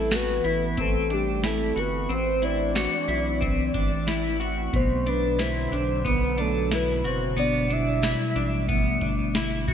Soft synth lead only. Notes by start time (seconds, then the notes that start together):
Already playing: A4
0.15 B4
0.80 A4
1.13 G4
1.46 A4
1.79 B4
2.12 C5
2.44 D5
4.76 C5
5.08 B4
5.41 C5
6.07 B4
6.40 A4
6.74 B4
7.07 C5
7.39 D5
7.73 E5